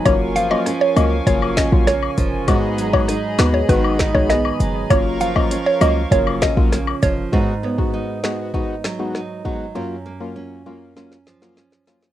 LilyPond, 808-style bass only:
\new Staff \with { instrumentName = "808-style bass" } { \clef bass \time 4/4 \key gis \dorian \tempo 4 = 99 fis,,4 r8 cis,8 fis,,8. ais,,8. eis,,8 | gis,,4 r8 dis,8 gis,,8. b,,8. fis,,8 | fis,,4 r8 cis,8 fis,,8. ais,,8. eis,,8 | r1 |
r1 | }